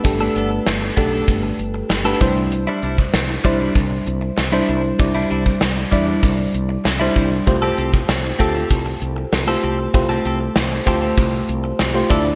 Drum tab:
HH |x-x-x-x-x-x-x-x-|x-x-x-x-x-x-x-x-|x-x-x-x-x-x-x-x-|x-x-x-x-x-x-x-x-|
SD |----o-------o---|----o-------o---|----o-------o---|----o-------o---|
BD |o-----o-o-----o-|---o--o-o-------|o--o--o-o-----o-|o--o--o-o-------|

HH |x-x-x-x-x-x-x-xx|
SD |----o-------o---|
BD |o-----o-o-----o-|